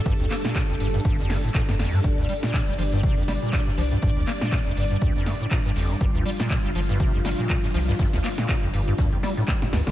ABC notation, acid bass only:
X:1
M:4/4
L:1/16
Q:"Swing 16ths" 1/4=121
K:Gm
V:1 name="Acid bass" clef=bass
G,, F,, B, B,, B,, F,, G,, G,, G,, F,, G,, A,, B,, G,, F,, G,, | G,, G,, G, B,, B,, G, F, G,, C, F,, G, B,, B,, G,, F, G,, | G,, F,, B, B,, B,, F,, G,, G,, G,, F,, G,, A,, B,, G,, F,, G,, | G,, G,, G, B,, B,, G, F, G,, C, F,, G, B,, B,, G,, F, G,, |
G,, F,, B, B,, B,, F,, G,, G,, G,, F,, G, A,, G,, A,, G,, D, |]